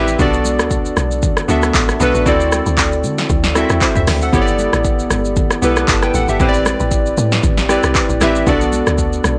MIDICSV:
0, 0, Header, 1, 4, 480
1, 0, Start_track
1, 0, Tempo, 517241
1, 179, Time_signature, 4, 2, 24, 8
1, 8711, End_track
2, 0, Start_track
2, 0, Title_t, "Synth keys"
2, 0, Program_c, 0, 88
2, 0, Control_c, 0, 64, 127
2, 0, Note_on_c, 0, 60, 86
2, 0, Note_on_c, 0, 64, 81
2, 0, Note_on_c, 0, 67, 84
2, 0, Note_on_c, 0, 71, 83
2, 0, Note_on_c, 0, 74, 98
2, 0, Note_on_c, 0, 76, 95
2, 134, Note_off_c, 0, 60, 0
2, 137, Note_off_c, 0, 64, 0
2, 140, Note_off_c, 0, 67, 0
2, 143, Note_off_c, 0, 71, 0
2, 146, Note_off_c, 0, 76, 0
2, 175, Note_on_c, 0, 59, 86
2, 181, Note_on_c, 0, 62, 83
2, 187, Note_on_c, 0, 66, 81
2, 193, Note_off_c, 0, 74, 0
2, 193, Control_c, 0, 64, 0
2, 193, Note_on_c, 0, 69, 80
2, 200, Note_on_c, 0, 74, 99
2, 333, Control_c, 0, 64, 127
2, 950, Note_off_c, 0, 59, 0
2, 953, Note_off_c, 0, 62, 0
2, 956, Note_off_c, 0, 66, 0
2, 959, Note_off_c, 0, 69, 0
2, 962, Note_off_c, 0, 74, 0
2, 1374, Note_on_c, 0, 59, 82
2, 1381, Note_on_c, 0, 62, 78
2, 1387, Note_on_c, 0, 66, 72
2, 1393, Note_on_c, 0, 69, 73
2, 1400, Note_on_c, 0, 76, 92
2, 1771, Note_off_c, 0, 59, 0
2, 1774, Note_off_c, 0, 62, 0
2, 1777, Note_off_c, 0, 66, 0
2, 1780, Note_off_c, 0, 69, 0
2, 1783, Note_off_c, 0, 76, 0
2, 1854, Note_on_c, 0, 59, 93
2, 1860, Note_on_c, 0, 62, 84
2, 1867, Note_on_c, 0, 66, 83
2, 1873, Note_on_c, 0, 69, 81
2, 1879, Note_on_c, 0, 71, 104
2, 2054, Note_off_c, 0, 59, 0
2, 2057, Note_off_c, 0, 62, 0
2, 2060, Note_off_c, 0, 66, 0
2, 2063, Note_off_c, 0, 69, 0
2, 2066, Note_off_c, 0, 71, 0
2, 2094, Note_on_c, 0, 60, 90
2, 2100, Note_on_c, 0, 64, 82
2, 2106, Note_on_c, 0, 66, 79
2, 2111, Control_c, 0, 64, 0
2, 2113, Note_on_c, 0, 69, 82
2, 2119, Note_on_c, 0, 74, 96
2, 2275, Control_c, 0, 64, 127
2, 2869, Note_off_c, 0, 60, 0
2, 2873, Note_off_c, 0, 64, 0
2, 2876, Note_off_c, 0, 66, 0
2, 2879, Note_off_c, 0, 69, 0
2, 2882, Note_off_c, 0, 74, 0
2, 3294, Note_on_c, 0, 60, 80
2, 3300, Note_on_c, 0, 64, 73
2, 3307, Note_on_c, 0, 66, 73
2, 3313, Note_on_c, 0, 69, 72
2, 3320, Note_on_c, 0, 76, 87
2, 3540, Note_off_c, 0, 64, 0
2, 3543, Note_off_c, 0, 66, 0
2, 3546, Note_off_c, 0, 69, 0
2, 3546, Note_on_c, 0, 72, 68
2, 3550, Note_off_c, 0, 76, 0
2, 3552, Note_on_c, 0, 64, 58
2, 3668, Note_off_c, 0, 72, 0
2, 3672, Note_off_c, 0, 64, 0
2, 3678, Note_on_c, 0, 76, 74
2, 3690, Note_off_c, 0, 60, 0
2, 3903, Note_off_c, 0, 76, 0
2, 3918, Note_on_c, 0, 78, 64
2, 3924, Note_on_c, 0, 69, 57
2, 4013, Note_on_c, 0, 59, 89
2, 4020, Note_on_c, 0, 64, 80
2, 4021, Note_off_c, 0, 69, 0
2, 4026, Note_on_c, 0, 67, 81
2, 4031, Control_c, 0, 64, 0
2, 4032, Note_on_c, 0, 69, 84
2, 4039, Note_on_c, 0, 73, 76
2, 4093, Note_off_c, 0, 73, 0
2, 4096, Note_on_c, 0, 74, 96
2, 4143, Note_off_c, 0, 78, 0
2, 4210, Control_c, 0, 64, 127
2, 4789, Note_off_c, 0, 59, 0
2, 4792, Note_off_c, 0, 64, 0
2, 4796, Note_off_c, 0, 67, 0
2, 4799, Note_off_c, 0, 69, 0
2, 4831, Note_off_c, 0, 74, 0
2, 5214, Note_on_c, 0, 59, 85
2, 5221, Note_on_c, 0, 64, 71
2, 5227, Note_on_c, 0, 67, 73
2, 5234, Note_on_c, 0, 69, 77
2, 5240, Note_on_c, 0, 71, 91
2, 5463, Note_off_c, 0, 67, 0
2, 5467, Note_off_c, 0, 69, 0
2, 5467, Note_on_c, 0, 81, 65
2, 5470, Note_off_c, 0, 71, 0
2, 5589, Note_off_c, 0, 81, 0
2, 5599, Note_on_c, 0, 79, 74
2, 5604, Note_on_c, 0, 71, 62
2, 5611, Note_off_c, 0, 59, 0
2, 5614, Note_off_c, 0, 64, 0
2, 5698, Note_off_c, 0, 79, 0
2, 5701, Note_off_c, 0, 71, 0
2, 5707, Note_on_c, 0, 78, 78
2, 5712, Note_on_c, 0, 69, 65
2, 5829, Note_off_c, 0, 78, 0
2, 5832, Note_off_c, 0, 69, 0
2, 5839, Note_on_c, 0, 76, 67
2, 5845, Note_on_c, 0, 67, 60
2, 5934, Note_on_c, 0, 60, 89
2, 5935, Note_off_c, 0, 67, 0
2, 5941, Note_on_c, 0, 64, 79
2, 5947, Note_on_c, 0, 67, 81
2, 5950, Control_c, 0, 64, 0
2, 5953, Note_on_c, 0, 71, 82
2, 5959, Note_on_c, 0, 72, 76
2, 6013, Note_off_c, 0, 72, 0
2, 6017, Note_on_c, 0, 74, 102
2, 6063, Note_off_c, 0, 76, 0
2, 6113, Control_c, 0, 64, 127
2, 6710, Note_off_c, 0, 60, 0
2, 6713, Note_off_c, 0, 64, 0
2, 6716, Note_off_c, 0, 67, 0
2, 6719, Note_off_c, 0, 71, 0
2, 6751, Note_off_c, 0, 74, 0
2, 7134, Note_on_c, 0, 60, 82
2, 7140, Note_on_c, 0, 64, 76
2, 7147, Note_on_c, 0, 67, 74
2, 7153, Note_on_c, 0, 71, 77
2, 7159, Note_on_c, 0, 74, 88
2, 7530, Note_off_c, 0, 60, 0
2, 7533, Note_off_c, 0, 64, 0
2, 7537, Note_off_c, 0, 67, 0
2, 7540, Note_off_c, 0, 71, 0
2, 7543, Note_off_c, 0, 74, 0
2, 7614, Note_on_c, 0, 60, 93
2, 7621, Note_on_c, 0, 64, 87
2, 7627, Note_on_c, 0, 67, 80
2, 7633, Note_on_c, 0, 71, 80
2, 7640, Note_on_c, 0, 76, 98
2, 7814, Note_off_c, 0, 60, 0
2, 7817, Note_off_c, 0, 64, 0
2, 7820, Note_off_c, 0, 67, 0
2, 7823, Note_off_c, 0, 71, 0
2, 7827, Note_off_c, 0, 76, 0
2, 7854, Note_on_c, 0, 59, 89
2, 7861, Note_on_c, 0, 62, 83
2, 7867, Note_on_c, 0, 66, 83
2, 7869, Control_c, 0, 64, 0
2, 7873, Note_on_c, 0, 69, 81
2, 7880, Note_on_c, 0, 74, 101
2, 8033, Control_c, 0, 64, 127
2, 8630, Note_off_c, 0, 59, 0
2, 8633, Note_off_c, 0, 62, 0
2, 8636, Note_off_c, 0, 66, 0
2, 8639, Note_off_c, 0, 69, 0
2, 8642, Note_off_c, 0, 74, 0
2, 8711, End_track
3, 0, Start_track
3, 0, Title_t, "Log drum bass"
3, 0, Program_c, 1, 39
3, 0, Note_on_c, 1, 33, 94
3, 147, Note_off_c, 1, 33, 0
3, 179, Note_on_c, 1, 35, 118
3, 552, Note_on_c, 1, 38, 95
3, 566, Note_off_c, 1, 35, 0
3, 853, Note_off_c, 1, 38, 0
3, 899, Note_on_c, 1, 35, 92
3, 1221, Note_off_c, 1, 35, 0
3, 1380, Note_on_c, 1, 38, 97
3, 1587, Note_off_c, 1, 38, 0
3, 1619, Note_on_c, 1, 33, 89
3, 1827, Note_off_c, 1, 33, 0
3, 1860, Note_on_c, 1, 35, 105
3, 1974, Note_off_c, 1, 35, 0
3, 1992, Note_on_c, 1, 33, 101
3, 2085, Note_off_c, 1, 33, 0
3, 2100, Note_on_c, 1, 38, 110
3, 2421, Note_off_c, 1, 38, 0
3, 2471, Note_on_c, 1, 38, 104
3, 2820, Note_on_c, 1, 50, 108
3, 2834, Note_off_c, 1, 38, 0
3, 3027, Note_off_c, 1, 50, 0
3, 3060, Note_on_c, 1, 38, 99
3, 3382, Note_off_c, 1, 38, 0
3, 3432, Note_on_c, 1, 40, 91
3, 3525, Note_off_c, 1, 40, 0
3, 3672, Note_on_c, 1, 38, 91
3, 3765, Note_off_c, 1, 38, 0
3, 3780, Note_on_c, 1, 38, 93
3, 3987, Note_off_c, 1, 38, 0
3, 4020, Note_on_c, 1, 31, 108
3, 4341, Note_off_c, 1, 31, 0
3, 4392, Note_on_c, 1, 33, 94
3, 4693, Note_off_c, 1, 33, 0
3, 4740, Note_on_c, 1, 31, 89
3, 5062, Note_off_c, 1, 31, 0
3, 5220, Note_on_c, 1, 35, 88
3, 5427, Note_off_c, 1, 35, 0
3, 5458, Note_on_c, 1, 31, 98
3, 5666, Note_off_c, 1, 31, 0
3, 5699, Note_on_c, 1, 33, 97
3, 5814, Note_off_c, 1, 33, 0
3, 5831, Note_on_c, 1, 31, 91
3, 5925, Note_off_c, 1, 31, 0
3, 5939, Note_on_c, 1, 33, 109
3, 6261, Note_off_c, 1, 33, 0
3, 6312, Note_on_c, 1, 33, 105
3, 6613, Note_off_c, 1, 33, 0
3, 6660, Note_on_c, 1, 45, 108
3, 6867, Note_off_c, 1, 45, 0
3, 6900, Note_on_c, 1, 33, 96
3, 7222, Note_off_c, 1, 33, 0
3, 7271, Note_on_c, 1, 36, 80
3, 7365, Note_off_c, 1, 36, 0
3, 7511, Note_on_c, 1, 33, 89
3, 7605, Note_off_c, 1, 33, 0
3, 7620, Note_on_c, 1, 33, 94
3, 7827, Note_off_c, 1, 33, 0
3, 7859, Note_on_c, 1, 35, 113
3, 8181, Note_off_c, 1, 35, 0
3, 8232, Note_on_c, 1, 38, 100
3, 8533, Note_off_c, 1, 38, 0
3, 8580, Note_on_c, 1, 35, 97
3, 8711, Note_off_c, 1, 35, 0
3, 8711, End_track
4, 0, Start_track
4, 0, Title_t, "Drums"
4, 72, Note_on_c, 9, 82, 61
4, 165, Note_off_c, 9, 82, 0
4, 179, Note_on_c, 9, 36, 113
4, 179, Note_on_c, 9, 64, 81
4, 179, Note_on_c, 9, 82, 75
4, 271, Note_off_c, 9, 64, 0
4, 272, Note_off_c, 9, 36, 0
4, 272, Note_off_c, 9, 82, 0
4, 312, Note_on_c, 9, 82, 54
4, 404, Note_off_c, 9, 82, 0
4, 416, Note_on_c, 9, 63, 79
4, 418, Note_on_c, 9, 82, 105
4, 509, Note_off_c, 9, 63, 0
4, 510, Note_off_c, 9, 82, 0
4, 551, Note_on_c, 9, 37, 102
4, 551, Note_on_c, 9, 82, 59
4, 644, Note_off_c, 9, 37, 0
4, 644, Note_off_c, 9, 82, 0
4, 656, Note_on_c, 9, 36, 88
4, 656, Note_on_c, 9, 82, 77
4, 749, Note_off_c, 9, 36, 0
4, 749, Note_off_c, 9, 82, 0
4, 793, Note_on_c, 9, 82, 46
4, 886, Note_off_c, 9, 82, 0
4, 898, Note_on_c, 9, 37, 95
4, 898, Note_on_c, 9, 63, 79
4, 900, Note_on_c, 9, 82, 87
4, 991, Note_off_c, 9, 37, 0
4, 991, Note_off_c, 9, 63, 0
4, 992, Note_off_c, 9, 82, 0
4, 1034, Note_on_c, 9, 82, 53
4, 1126, Note_off_c, 9, 82, 0
4, 1138, Note_on_c, 9, 82, 82
4, 1140, Note_on_c, 9, 36, 122
4, 1140, Note_on_c, 9, 64, 83
4, 1230, Note_off_c, 9, 82, 0
4, 1233, Note_off_c, 9, 36, 0
4, 1233, Note_off_c, 9, 64, 0
4, 1270, Note_on_c, 9, 37, 99
4, 1274, Note_on_c, 9, 82, 56
4, 1363, Note_off_c, 9, 37, 0
4, 1366, Note_off_c, 9, 82, 0
4, 1378, Note_on_c, 9, 63, 70
4, 1381, Note_on_c, 9, 82, 92
4, 1471, Note_off_c, 9, 63, 0
4, 1474, Note_off_c, 9, 82, 0
4, 1507, Note_on_c, 9, 63, 58
4, 1509, Note_on_c, 9, 82, 59
4, 1514, Note_on_c, 9, 37, 98
4, 1600, Note_off_c, 9, 63, 0
4, 1602, Note_off_c, 9, 82, 0
4, 1607, Note_off_c, 9, 37, 0
4, 1618, Note_on_c, 9, 36, 103
4, 1619, Note_on_c, 9, 39, 114
4, 1619, Note_on_c, 9, 82, 84
4, 1711, Note_off_c, 9, 36, 0
4, 1711, Note_off_c, 9, 82, 0
4, 1712, Note_off_c, 9, 39, 0
4, 1752, Note_on_c, 9, 82, 48
4, 1753, Note_on_c, 9, 37, 94
4, 1845, Note_off_c, 9, 82, 0
4, 1846, Note_off_c, 9, 37, 0
4, 1860, Note_on_c, 9, 63, 66
4, 1860, Note_on_c, 9, 64, 64
4, 1861, Note_on_c, 9, 82, 92
4, 1953, Note_off_c, 9, 63, 0
4, 1953, Note_off_c, 9, 64, 0
4, 1953, Note_off_c, 9, 82, 0
4, 1993, Note_on_c, 9, 82, 59
4, 2086, Note_off_c, 9, 82, 0
4, 2099, Note_on_c, 9, 64, 82
4, 2100, Note_on_c, 9, 36, 108
4, 2100, Note_on_c, 9, 82, 75
4, 2192, Note_off_c, 9, 36, 0
4, 2192, Note_off_c, 9, 64, 0
4, 2193, Note_off_c, 9, 82, 0
4, 2232, Note_on_c, 9, 82, 56
4, 2325, Note_off_c, 9, 82, 0
4, 2336, Note_on_c, 9, 63, 77
4, 2339, Note_on_c, 9, 82, 101
4, 2342, Note_on_c, 9, 37, 104
4, 2429, Note_off_c, 9, 63, 0
4, 2431, Note_off_c, 9, 82, 0
4, 2435, Note_off_c, 9, 37, 0
4, 2471, Note_on_c, 9, 82, 58
4, 2564, Note_off_c, 9, 82, 0
4, 2576, Note_on_c, 9, 82, 81
4, 2577, Note_on_c, 9, 36, 85
4, 2577, Note_on_c, 9, 39, 94
4, 2669, Note_off_c, 9, 82, 0
4, 2670, Note_off_c, 9, 36, 0
4, 2670, Note_off_c, 9, 39, 0
4, 2713, Note_on_c, 9, 82, 46
4, 2806, Note_off_c, 9, 82, 0
4, 2818, Note_on_c, 9, 63, 82
4, 2819, Note_on_c, 9, 82, 89
4, 2911, Note_off_c, 9, 63, 0
4, 2912, Note_off_c, 9, 82, 0
4, 2953, Note_on_c, 9, 82, 50
4, 2954, Note_on_c, 9, 38, 70
4, 3046, Note_off_c, 9, 82, 0
4, 3047, Note_off_c, 9, 38, 0
4, 3057, Note_on_c, 9, 82, 81
4, 3060, Note_on_c, 9, 36, 121
4, 3061, Note_on_c, 9, 64, 79
4, 3150, Note_off_c, 9, 82, 0
4, 3153, Note_off_c, 9, 36, 0
4, 3154, Note_off_c, 9, 64, 0
4, 3189, Note_on_c, 9, 38, 70
4, 3193, Note_on_c, 9, 82, 57
4, 3282, Note_off_c, 9, 38, 0
4, 3285, Note_off_c, 9, 82, 0
4, 3298, Note_on_c, 9, 37, 94
4, 3299, Note_on_c, 9, 63, 73
4, 3301, Note_on_c, 9, 82, 91
4, 3391, Note_off_c, 9, 37, 0
4, 3392, Note_off_c, 9, 63, 0
4, 3394, Note_off_c, 9, 82, 0
4, 3428, Note_on_c, 9, 63, 58
4, 3429, Note_on_c, 9, 82, 58
4, 3434, Note_on_c, 9, 37, 97
4, 3521, Note_off_c, 9, 63, 0
4, 3522, Note_off_c, 9, 82, 0
4, 3527, Note_off_c, 9, 37, 0
4, 3539, Note_on_c, 9, 36, 105
4, 3539, Note_on_c, 9, 39, 111
4, 3539, Note_on_c, 9, 82, 81
4, 3631, Note_off_c, 9, 36, 0
4, 3631, Note_off_c, 9, 82, 0
4, 3632, Note_off_c, 9, 39, 0
4, 3670, Note_on_c, 9, 45, 91
4, 3672, Note_on_c, 9, 82, 50
4, 3763, Note_off_c, 9, 45, 0
4, 3765, Note_off_c, 9, 82, 0
4, 3780, Note_on_c, 9, 46, 77
4, 3780, Note_on_c, 9, 63, 66
4, 3780, Note_on_c, 9, 64, 64
4, 3780, Note_on_c, 9, 82, 93
4, 3782, Note_on_c, 9, 37, 100
4, 3782, Note_on_c, 9, 38, 68
4, 3873, Note_off_c, 9, 46, 0
4, 3873, Note_off_c, 9, 63, 0
4, 3873, Note_off_c, 9, 64, 0
4, 3873, Note_off_c, 9, 82, 0
4, 3875, Note_off_c, 9, 37, 0
4, 3875, Note_off_c, 9, 38, 0
4, 3913, Note_on_c, 9, 82, 59
4, 4006, Note_off_c, 9, 82, 0
4, 4019, Note_on_c, 9, 64, 82
4, 4020, Note_on_c, 9, 36, 111
4, 4020, Note_on_c, 9, 82, 76
4, 4112, Note_off_c, 9, 36, 0
4, 4112, Note_off_c, 9, 64, 0
4, 4113, Note_off_c, 9, 82, 0
4, 4152, Note_on_c, 9, 82, 57
4, 4245, Note_off_c, 9, 82, 0
4, 4256, Note_on_c, 9, 63, 76
4, 4258, Note_on_c, 9, 82, 99
4, 4349, Note_off_c, 9, 63, 0
4, 4351, Note_off_c, 9, 82, 0
4, 4391, Note_on_c, 9, 37, 100
4, 4391, Note_on_c, 9, 82, 59
4, 4483, Note_off_c, 9, 82, 0
4, 4484, Note_off_c, 9, 37, 0
4, 4496, Note_on_c, 9, 82, 73
4, 4497, Note_on_c, 9, 36, 85
4, 4588, Note_off_c, 9, 82, 0
4, 4590, Note_off_c, 9, 36, 0
4, 4633, Note_on_c, 9, 82, 45
4, 4726, Note_off_c, 9, 82, 0
4, 4737, Note_on_c, 9, 37, 96
4, 4739, Note_on_c, 9, 63, 84
4, 4739, Note_on_c, 9, 82, 86
4, 4830, Note_off_c, 9, 37, 0
4, 4831, Note_off_c, 9, 82, 0
4, 4832, Note_off_c, 9, 63, 0
4, 4873, Note_on_c, 9, 82, 51
4, 4965, Note_off_c, 9, 82, 0
4, 4976, Note_on_c, 9, 82, 81
4, 4980, Note_on_c, 9, 36, 116
4, 4982, Note_on_c, 9, 64, 78
4, 5069, Note_off_c, 9, 82, 0
4, 5073, Note_off_c, 9, 36, 0
4, 5074, Note_off_c, 9, 64, 0
4, 5109, Note_on_c, 9, 37, 101
4, 5113, Note_on_c, 9, 82, 59
4, 5202, Note_off_c, 9, 37, 0
4, 5205, Note_off_c, 9, 82, 0
4, 5220, Note_on_c, 9, 63, 73
4, 5221, Note_on_c, 9, 82, 91
4, 5312, Note_off_c, 9, 63, 0
4, 5313, Note_off_c, 9, 82, 0
4, 5348, Note_on_c, 9, 63, 57
4, 5348, Note_on_c, 9, 82, 58
4, 5353, Note_on_c, 9, 37, 102
4, 5441, Note_off_c, 9, 63, 0
4, 5441, Note_off_c, 9, 82, 0
4, 5446, Note_off_c, 9, 37, 0
4, 5458, Note_on_c, 9, 36, 106
4, 5458, Note_on_c, 9, 39, 118
4, 5458, Note_on_c, 9, 82, 80
4, 5550, Note_off_c, 9, 82, 0
4, 5551, Note_off_c, 9, 36, 0
4, 5551, Note_off_c, 9, 39, 0
4, 5591, Note_on_c, 9, 82, 53
4, 5592, Note_on_c, 9, 37, 96
4, 5684, Note_off_c, 9, 82, 0
4, 5685, Note_off_c, 9, 37, 0
4, 5699, Note_on_c, 9, 82, 96
4, 5700, Note_on_c, 9, 63, 66
4, 5700, Note_on_c, 9, 64, 67
4, 5791, Note_off_c, 9, 82, 0
4, 5793, Note_off_c, 9, 63, 0
4, 5793, Note_off_c, 9, 64, 0
4, 5832, Note_on_c, 9, 82, 58
4, 5925, Note_off_c, 9, 82, 0
4, 5939, Note_on_c, 9, 36, 117
4, 5939, Note_on_c, 9, 64, 80
4, 5939, Note_on_c, 9, 82, 75
4, 6032, Note_off_c, 9, 36, 0
4, 6032, Note_off_c, 9, 64, 0
4, 6032, Note_off_c, 9, 82, 0
4, 6071, Note_on_c, 9, 82, 57
4, 6164, Note_off_c, 9, 82, 0
4, 6177, Note_on_c, 9, 63, 80
4, 6177, Note_on_c, 9, 82, 104
4, 6180, Note_on_c, 9, 37, 100
4, 6270, Note_off_c, 9, 63, 0
4, 6270, Note_off_c, 9, 82, 0
4, 6273, Note_off_c, 9, 37, 0
4, 6310, Note_on_c, 9, 82, 58
4, 6403, Note_off_c, 9, 82, 0
4, 6416, Note_on_c, 9, 82, 78
4, 6417, Note_on_c, 9, 36, 86
4, 6508, Note_off_c, 9, 82, 0
4, 6509, Note_off_c, 9, 36, 0
4, 6553, Note_on_c, 9, 82, 45
4, 6646, Note_off_c, 9, 82, 0
4, 6658, Note_on_c, 9, 63, 85
4, 6659, Note_on_c, 9, 82, 90
4, 6751, Note_off_c, 9, 63, 0
4, 6752, Note_off_c, 9, 82, 0
4, 6793, Note_on_c, 9, 82, 50
4, 6794, Note_on_c, 9, 38, 74
4, 6886, Note_off_c, 9, 82, 0
4, 6887, Note_off_c, 9, 38, 0
4, 6897, Note_on_c, 9, 82, 83
4, 6900, Note_on_c, 9, 36, 118
4, 6901, Note_on_c, 9, 64, 80
4, 6990, Note_off_c, 9, 82, 0
4, 6993, Note_off_c, 9, 36, 0
4, 6994, Note_off_c, 9, 64, 0
4, 7029, Note_on_c, 9, 38, 70
4, 7033, Note_on_c, 9, 82, 57
4, 7122, Note_off_c, 9, 38, 0
4, 7125, Note_off_c, 9, 82, 0
4, 7138, Note_on_c, 9, 37, 93
4, 7139, Note_on_c, 9, 63, 72
4, 7141, Note_on_c, 9, 82, 93
4, 7231, Note_off_c, 9, 37, 0
4, 7232, Note_off_c, 9, 63, 0
4, 7234, Note_off_c, 9, 82, 0
4, 7268, Note_on_c, 9, 63, 57
4, 7268, Note_on_c, 9, 82, 60
4, 7274, Note_on_c, 9, 37, 98
4, 7361, Note_off_c, 9, 63, 0
4, 7361, Note_off_c, 9, 82, 0
4, 7366, Note_off_c, 9, 37, 0
4, 7378, Note_on_c, 9, 36, 103
4, 7378, Note_on_c, 9, 39, 110
4, 7378, Note_on_c, 9, 82, 82
4, 7471, Note_off_c, 9, 36, 0
4, 7471, Note_off_c, 9, 39, 0
4, 7471, Note_off_c, 9, 82, 0
4, 7512, Note_on_c, 9, 82, 51
4, 7605, Note_off_c, 9, 82, 0
4, 7620, Note_on_c, 9, 63, 67
4, 7620, Note_on_c, 9, 64, 68
4, 7620, Note_on_c, 9, 82, 97
4, 7622, Note_on_c, 9, 37, 101
4, 7622, Note_on_c, 9, 38, 70
4, 7712, Note_off_c, 9, 82, 0
4, 7713, Note_off_c, 9, 63, 0
4, 7713, Note_off_c, 9, 64, 0
4, 7715, Note_off_c, 9, 37, 0
4, 7715, Note_off_c, 9, 38, 0
4, 7753, Note_on_c, 9, 82, 59
4, 7846, Note_off_c, 9, 82, 0
4, 7859, Note_on_c, 9, 36, 110
4, 7859, Note_on_c, 9, 64, 81
4, 7860, Note_on_c, 9, 82, 76
4, 7952, Note_off_c, 9, 36, 0
4, 7952, Note_off_c, 9, 64, 0
4, 7953, Note_off_c, 9, 82, 0
4, 7992, Note_on_c, 9, 82, 58
4, 8084, Note_off_c, 9, 82, 0
4, 8097, Note_on_c, 9, 63, 82
4, 8098, Note_on_c, 9, 82, 107
4, 8190, Note_off_c, 9, 63, 0
4, 8191, Note_off_c, 9, 82, 0
4, 8230, Note_on_c, 9, 82, 60
4, 8231, Note_on_c, 9, 37, 100
4, 8323, Note_off_c, 9, 82, 0
4, 8324, Note_off_c, 9, 37, 0
4, 8335, Note_on_c, 9, 82, 77
4, 8337, Note_on_c, 9, 36, 81
4, 8428, Note_off_c, 9, 82, 0
4, 8429, Note_off_c, 9, 36, 0
4, 8473, Note_on_c, 9, 82, 46
4, 8566, Note_off_c, 9, 82, 0
4, 8577, Note_on_c, 9, 37, 103
4, 8578, Note_on_c, 9, 63, 81
4, 8579, Note_on_c, 9, 82, 89
4, 8670, Note_off_c, 9, 37, 0
4, 8671, Note_off_c, 9, 63, 0
4, 8671, Note_off_c, 9, 82, 0
4, 8711, End_track
0, 0, End_of_file